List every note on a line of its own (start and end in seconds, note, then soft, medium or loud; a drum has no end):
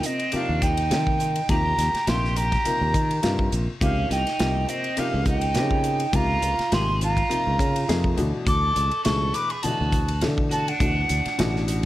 0.00 0.19 C3 medium
0.00 0.19 F3 medium
0.00 0.19 A#3 medium
0.00 0.19 D#4 medium
0.00 0.19 A#4 medium
0.00 hi-hat pedal medium
0.00 ride soft
0.06 0.35 C4 medium
0.06 0.34 D#5 medium
0.19 ride soft
0.32 0.76 C3 medium
0.32 0.76 F3 medium
0.32 0.77 A#3 medium
0.32 0.76 D#4 medium
0.32 0.77 G4 medium
0.32 0.64 F5 medium
0.32 muted fretless electric bass stroke soft
0.32 hi-hat pedal medium
0.32 ride medium
0.36 0.64 D4 medium
0.49 0.93 D#2 medium
0.62 1.51 D#4 medium
0.62 1.51 G5 medium
0.62 kick medium
0.62 hi-hat pedal medium
0.62 ride medium
0.77 ride medium
0.90 1.35 C3 medium
0.90 1.40 D#3 medium
0.90 1.34 F3 medium
0.90 1.35 A#3 medium
0.90 1.35 D#4 medium
0.90 1.35 F4 medium
0.90 snare medium
0.90 hi-hat pedal medium
0.90 ride medium
1.07 kick medium
1.20 hi-hat pedal medium
1.20 ride soft
1.36 ride medium
1.49 1.74 D#2 medium
1.49 1.93 C3 medium
1.49 1.93 F3 medium
1.49 1.93 A#3 medium
1.49 1.93 D#4 medium
1.49 1.93 G4 medium
1.49 2.06 G4 medium
1.49 2.10 A#5 medium
1.49 kick medium
1.49 hi-hat pedal medium
1.49 ride medium
1.78 1.92 D#2 medium
1.78 snare soft
1.78 hi-hat pedal medium
1.78 ride medium
1.94 muted fretless electric bass stroke soft
1.94 snare soft
1.94 ride soft
2.07 2.56 A#1 medium
2.07 2.51 C3 medium
2.07 2.51 F3 medium
2.07 2.51 A#3 medium
2.07 2.51 D#4 soft
2.07 2.51 F4 medium
2.07 2.35 G4 medium
2.07 2.38 C6 medium
2.07 snare medium
2.07 hi-hat pedal medium
2.07 ride medium
2.24 snare soft
2.36 3.52 G4 medium
2.36 3.53 A#5 medium
2.36 hi-hat pedal medium
2.36 ride medium
2.52 kick medium
2.52 snare soft
2.52 ride medium
2.65 3.09 C3 medium
2.65 3.09 F3 medium
2.65 3.09 A#3 medium
2.65 3.09 D#4 medium
2.65 3.09 A#4 medium
2.65 muted fretless electric bass stroke soft
2.65 hi-hat pedal medium
2.65 ride medium
2.81 2.92 D#2 medium
2.94 3.19 D#3 medium
2.94 kick medium
2.94 hi-hat pedal medium
2.94 ride medium
3.11 ride medium
3.23 3.48 G2 medium
3.23 3.67 C3 medium
3.23 3.67 F3 medium
3.23 3.67 A#3 medium
3.23 3.67 D#4 medium
3.23 3.67 F4 medium
3.23 snare medium
3.23 hi-hat pedal medium
3.23 ride medium
3.39 kick medium
3.52 3.66 A#1 medium
3.52 hi-hat pedal medium
3.52 ride soft
3.81 4.06 C#2 medium
3.81 4.25 C3 medium
3.81 4.25 F3 medium
3.81 4.25 A#3 medium
3.81 4.09 C#4 medium
3.81 4.25 D#4 medium
3.81 4.25 G4 medium
3.81 4.09 F5 medium
3.81 kick loud
3.81 hi-hat pedal medium
3.81 ride medium
4.11 4.24 C2 medium
4.11 4.65 D#4 medium
4.11 4.71 G5 medium
4.11 snare soft
4.11 hi-hat pedal medium
4.11 ride soft
4.27 snare soft
4.27 ride soft
4.39 4.64 C2 medium
4.39 4.83 C3 medium
4.39 4.83 F3 medium
4.39 4.83 A#3 medium
4.39 4.83 D#4 soft
4.39 4.83 G4 medium
4.39 snare loud
4.39 hi-hat pedal medium
4.39 ride medium
4.69 4.97 C4 medium
4.69 5.00 D#5 medium
4.69 hi-hat pedal medium
4.69 ride medium
4.84 ride soft
4.97 5.41 C3 medium
4.97 5.41 F3 medium
4.97 5.41 A#3 medium
4.97 5.26 C#4 medium
4.97 5.41 D#4 medium
4.97 5.41 G4 medium
4.97 5.27 F5 medium
4.97 muted fretless electric bass stroke soft
4.97 hi-hat pedal medium
4.97 ride medium
5.14 5.57 C#2 medium
5.26 6.10 D#4 medium
5.26 6.17 G5 medium
5.26 kick medium
5.26 hi-hat pedal medium
5.26 ride soft
5.41 ride medium
5.55 6.05 C#3 medium
5.55 5.99 F3 medium
5.55 5.99 A#3 medium
5.55 5.99 C4 medium
5.55 5.99 D#4 medium
5.55 5.99 G4 medium
5.55 snare medium
5.55 hi-hat pedal medium
5.55 ride medium
5.71 kick medium
5.84 hi-hat pedal medium
5.84 ride soft
6.00 ride medium
6.12 6.38 C#2 medium
6.12 6.57 C3 medium
6.12 6.57 F3 medium
6.12 6.57 A#3 medium
6.12 6.57 D#4 medium
6.12 6.73 F4 medium
6.12 6.57 G4 medium
6.12 6.75 A#5 loud
6.12 kick medium
6.12 hi-hat pedal medium
6.12 ride medium
6.42 6.56 C#2 medium
6.42 hi-hat pedal medium
6.42 ride medium
6.59 muted fretless electric bass stroke soft
6.59 snare soft
6.59 ride soft
6.72 7.21 G#1 medium
6.72 7.16 C3 medium
6.72 7.16 F3 soft
6.72 7.16 A#3 soft
6.72 7.16 D#4 medium
6.72 7.16 G4 medium
6.72 7.02 G#4 medium
6.72 7.02 C6 medium
6.72 snare loud
6.72 hi-hat pedal medium
6.72 ride medium
7.01 8.15 F4 medium
7.01 8.15 A#5 medium
7.01 hi-hat pedal medium
7.01 ride medium
7.17 kick medium
7.17 ride medium
7.29 7.74 C3 medium
7.29 7.74 F3 medium
7.29 7.74 A#3 medium
7.29 7.74 D#4 medium
7.29 7.74 F4 medium
7.29 muted fretless electric bass stroke soft
7.29 hi-hat pedal medium
7.29 ride medium
7.47 7.58 C#2 medium
7.59 7.84 C#3 medium
7.59 kick medium
7.59 hi-hat pedal medium
7.59 ride medium
7.76 ride medium
7.88 8.13 F2 medium
7.88 8.18 C3 medium
7.88 8.18 F3 medium
7.88 8.18 A#3 medium
7.88 8.18 D#4 medium
7.88 8.18 G#4 medium
7.88 snare medium
7.88 hi-hat pedal medium
7.88 ride medium
8.04 kick medium
8.17 8.31 D2 medium
8.17 8.88 B2 medium
8.17 8.88 E3 medium
8.17 8.88 A3 medium
8.17 8.88 D4 medium
8.17 8.88 F#4 medium
8.17 hi-hat pedal medium
8.17 ride soft
8.47 8.71 D2 medium
8.47 9.01 A4 medium
8.47 9.01 D6 loud
8.47 kick medium
8.47 hi-hat pedal medium
8.47 ride medium
8.76 8.90 C#2 medium
8.76 hi-hat pedal medium
8.76 ride soft
8.91 ride soft
9.04 9.30 C#2 medium
9.04 9.49 B2 medium
9.04 9.49 E3 medium
9.04 9.49 A3 medium
9.04 9.49 D4 medium
9.04 9.49 G#4 medium
9.04 9.33 A4 medium
9.04 9.35 C#6 medium
9.04 snare loud
9.04 hi-hat pedal medium
9.04 ride medium
9.33 9.49 B4 medium
9.33 9.52 D6 medium
9.33 hi-hat pedal medium
9.33 ride medium
9.49 9.63 G#4 medium
9.49 9.64 B5 medium
9.49 ride medium
9.63 10.07 B2 medium
9.63 10.08 E3 medium
9.63 10.08 A3 medium
9.63 10.08 D4 medium
9.63 10.22 F#4 soft
9.63 10.08 F#4 medium
9.63 10.21 A5 medium
9.63 muted fretless electric bass stroke soft
9.63 hi-hat pedal medium
9.63 ride medium
9.81 10.25 D2 medium
9.92 kick medium
9.92 hi-hat pedal medium
9.92 ride medium
10.08 ride medium
10.21 10.66 B2 medium
10.21 10.72 D3 medium
10.21 10.66 E3 medium
10.21 10.66 A3 medium
10.21 10.66 D4 medium
10.21 10.66 A4 medium
10.21 snare medium
10.21 hi-hat pedal medium
10.21 ride medium
10.38 kick medium
10.51 10.69 F#4 medium
10.51 10.70 A5 medium
10.51 hi-hat pedal medium
10.51 ride soft
10.68 11.85 D4 medium
10.68 11.84 F#5 medium
10.68 ride medium
10.80 11.05 D2 medium
10.80 11.24 B2 medium
10.80 11.24 E3 medium
10.80 11.24 A3 soft
10.80 11.24 D4 medium
10.80 11.24 F#4 medium
10.80 kick medium
10.80 hi-hat pedal medium
10.80 ride medium
11.09 11.23 D2 medium
11.09 hi-hat pedal medium
11.09 ride medium
11.26 muted fretless electric bass stroke soft
11.26 snare soft
11.26 ride soft
11.38 11.86 A1 medium
11.38 11.82 B2 medium
11.38 11.82 E3 medium
11.38 11.82 A3 medium
11.38 11.82 D4 medium
11.38 11.83 F#4 medium
11.38 snare medium
11.38 hi-hat pedal medium
11.38 ride medium
11.56 snare soft
11.68 hi-hat pedal medium
11.68 ride medium